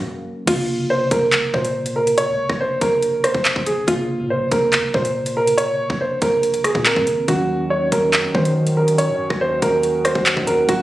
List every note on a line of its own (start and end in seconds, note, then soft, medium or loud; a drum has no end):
0.00 0.44 C#3 medium
0.00 0.43 F#3 medium
0.00 0.43 A#3 medium
0.00 0.44 A#3 medium
0.00 0.44 C#4 medium
0.00 0.43 F#4 medium
0.46 1.09 A#1 loud
0.46 3.85 C3 medium
0.46 3.83 C#3 medium
0.46 3.84 A#3 medium
0.46 0.87 F4 loud
0.46 kick loud
0.46 closed hi-hat loud
0.46 crash loud
0.90 1.08 C5 medium
1.11 1.34 A#1 loud
1.11 1.51 A#4 medium
1.11 kick loud
1.11 closed hi-hat medium
1.32 1.45 C#2 loud
1.32 clap loud
1.32 closed hi-hat medium
1.43 1.53 A#1 loud
1.54 2.30 A#2 loud
1.54 1.94 C5 medium
1.54 kick loud
1.65 closed hi-hat medium
1.86 closed hi-hat medium
1.96 2.14 A#4 medium
2.07 closed hi-hat medium
2.18 2.58 C#5 loud
2.18 closed hi-hat medium
2.28 2.48 C#2 loud
2.50 2.80 A#1 loud
2.50 kick medium
2.50 cross-stick medium
2.61 2.78 C5 medium
2.81 3.33 A#1 loud
2.81 3.22 A#4 medium
2.81 kick loud
2.81 closed hi-hat medium
3.02 closed hi-hat medium
3.24 3.64 C5 medium
3.24 cross-stick medium
3.24 closed hi-hat medium
3.34 3.55 A#1 loud
3.34 kick medium
3.45 clap loud
3.45 closed hi-hat medium
3.56 3.66 A#1 loud
3.56 kick loud
3.66 3.87 A#1 loud
3.66 3.84 G#4 medium
3.66 closed hi-hat medium
3.86 4.21 A#1 loud
3.86 6.83 C3 medium
3.86 6.81 C#3 medium
3.86 6.82 A#3 medium
3.86 4.28 F4 loud
3.86 kick loud
3.86 closed hi-hat loud
4.20 4.37 A#2 loud
4.30 4.48 C5 medium
4.36 4.51 A#1 loud
4.51 4.74 A#1 loud
4.51 4.92 A#4 medium
4.51 kick loud
4.51 closed hi-hat medium
4.73 4.85 F2 loud
4.73 clap loud
4.73 closed hi-hat medium
4.84 4.94 A#1 loud
4.94 5.86 A#2 loud
4.94 5.34 C5 medium
4.94 kick loud
5.05 closed hi-hat medium
5.26 closed hi-hat medium
5.37 5.54 A#4 medium
5.47 closed hi-hat medium
5.58 5.98 C#5 loud
5.58 closed hi-hat loud
5.90 6.21 A#1 loud
5.90 kick loud
6.01 6.18 C5 medium
6.22 6.73 A#1 loud
6.22 6.62 A#4 medium
6.22 kick loud
6.22 closed hi-hat medium
6.43 closed hi-hat medium
6.54 closed hi-hat medium
6.64 6.82 G#4 medium
6.64 cross-stick loud
6.64 closed hi-hat medium
6.75 6.95 A#2 loud
6.75 kick medium
6.85 7.28 C#3 medium
6.85 7.28 A#3 soft
6.85 7.29 C4 medium
6.85 7.26 A#4 medium
6.85 clap loud
6.85 closed hi-hat medium
6.96 7.07 F2 loud
6.96 kick loud
7.07 7.27 G#1 loud
7.07 closed hi-hat medium
7.27 7.90 D#2 loud
7.27 10.64 D#3 medium
7.27 10.65 D#3 medium
7.27 10.65 F#3 medium
7.27 10.65 C#4 medium
7.27 10.66 C#4 medium
7.27 7.68 F#4 loud
7.27 10.82 F#4 medium
7.27 kick loud
7.27 closed hi-hat loud
7.70 7.88 C#5 medium
7.92 8.15 D#2 loud
7.92 8.32 A#4 medium
7.92 kick loud
7.92 closed hi-hat medium
8.13 8.26 F#2 loud
8.13 clap loud
8.13 closed hi-hat medium
8.24 8.34 D#2 loud
8.35 9.11 D#3 loud
8.35 8.75 C5 medium
8.35 kick loud
8.45 closed hi-hat medium
8.67 closed hi-hat medium
8.77 8.95 A#4 medium
8.88 closed hi-hat medium
8.98 9.38 C#5 medium
8.98 closed hi-hat loud
9.09 9.29 F#2 loud
9.30 9.61 D#2 loud
9.30 kick loud
9.30 cross-stick medium
9.41 9.59 C5 medium
9.62 10.13 D#2 loud
9.62 10.02 A#4 medium
9.62 kick loud
9.62 closed hi-hat medium
9.83 closed hi-hat medium
10.05 10.45 C5 medium
10.05 cross-stick loud
10.05 closed hi-hat medium
10.15 10.36 D#2 loud
10.15 kick medium
10.26 clap loud
10.26 closed hi-hat medium
10.37 10.47 D#2 loud
10.37 kick loud
10.47 10.68 D#2 loud
10.47 10.65 A#4 medium
10.47 closed hi-hat medium
10.67 10.82 F#1 loud
10.67 10.82 C#3 medium
10.67 10.82 F#3 medium
10.67 10.82 A#3 medium
10.67 10.82 C#4 medium
10.67 10.82 F#4 loud
10.67 kick loud
10.67 closed hi-hat loud